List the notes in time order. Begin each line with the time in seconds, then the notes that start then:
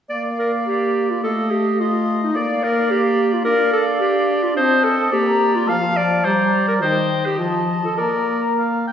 0.10 A#3 D5 F5
0.39 A#4
0.67 G4
1.10 F4
1.23 A3 A4 D#5 F5
1.51 G4
1.79 F4 D#5 F5
2.23 D#4
2.35 A#3 D5 F5
2.63 A#4
2.91 G4
3.33 F4
3.45 D4 A#4 D5 F5
3.73 A4
4.00 G4
4.43 F4
4.56 C4 C5 D#5 A5
4.84 A4
5.12 A#3 G4 D5 A#5
5.55 F4
5.68 F3 F5 A5
5.97 D5
6.24 G3 C5 D5 A#5
6.68 A#4
6.81 D#3 C5 D#5 G5
7.26 G4
7.39 F3 F4 A5
7.84 A4
7.97 A#3 A#4 D5 A#5
8.59 F5
8.87 G5